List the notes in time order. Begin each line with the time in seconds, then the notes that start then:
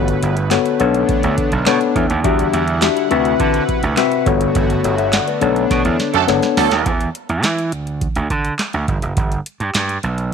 Already playing: G1 D3 A3 B3 F#4 A4 B4 C#5 F#5
0.08 closed hi-hat
0.23 G1, closed hi-hat
0.37 closed hi-hat
0.51 B3 F#4 A4 C#5, snare, clap, closed hi-hat
0.66 closed hi-hat
0.80 B1 B3 D4 A4 C#5, closed hi-hat
0.94 closed hi-hat
1.09 kick, closed hi-hat
1.23 D2, closed hi-hat
1.38 kick, closed hi-hat
1.52 B1, closed hi-hat
1.66 B2 B3 D4 A4 C#5, snare, clap, closed hi-hat
1.81 closed hi-hat
1.95 E2, kick, closed hi-hat
2.10 D#2, closed hi-hat
2.24 E2 D3 G3 D4 E4 F#4 G4 E5 F#5, kick, closed hi-hat
2.39 closed hi-hat
2.53 E2, closed hi-hat
2.68 closed hi-hat
2.82 D4 F#4 G4 E5, snare, clap, closed hi-hat
2.97 closed hi-hat
3.10 D2 C3 C4 F#4 B4 E5, closed hi-hat
3.25 closed hi-hat
3.40 D3, kick, closed hi-hat
3.54 closed hi-hat
3.69 kick, closed hi-hat
3.83 D2, closed hi-hat
3.97 C4 F#4 B4 E5, snare, clap, closed hi-hat
4.12 closed hi-hat
4.26 G1 D3 A3 B3 F#4 A4 C#5, kick, closed hi-hat
4.41 closed hi-hat
4.55 G1, kick, closed hi-hat
4.70 closed hi-hat
4.84 G1 A4 C#5, closed hi-hat
4.98 C#5 E5, closed hi-hat
5.13 D5 F#5, snare, clap, closed hi-hat
5.27 B4 D5, closed hi-hat
5.41 B1 B3 D4 A4 C#5, closed hi-hat
5.56 closed hi-hat
5.70 B2, kick, snare, closed hi-hat
5.85 E2, closed hi-hat
6.00 snare, closed hi-hat
6.14 F#2 F#3 A3 D4 A4, closed hi-hat
6.28 F#1 B3 D4 A4 C#5, snare, closed hi-hat
6.43 snare, closed hi-hat
6.57 D2 F#3 A3 D4 A4, snare, open hi-hat
6.71 D#2, snare, closed hi-hat
6.86 E2, kick, closed hi-hat
7.01 closed hi-hat
7.15 closed hi-hat
7.29 E2, closed hi-hat
7.43 E3, snare, clap, closed hi-hat
7.58 closed hi-hat
7.72 D2, closed hi-hat
7.87 closed hi-hat
8.01 kick, closed hi-hat
8.16 D2, closed hi-hat
8.30 D3, kick, closed hi-hat
8.45 closed hi-hat
8.59 snare, clap, closed hi-hat
8.73 D2, closed hi-hat
8.88 G1, kick, closed hi-hat
9.02 F#1, closed hi-hat
9.17 G1, kick, closed hi-hat
9.32 closed hi-hat
9.46 closed hi-hat
9.60 G2, closed hi-hat
9.74 G2, snare, clap, closed hi-hat
9.89 closed hi-hat
10.03 B1, closed hi-hat
10.18 closed hi-hat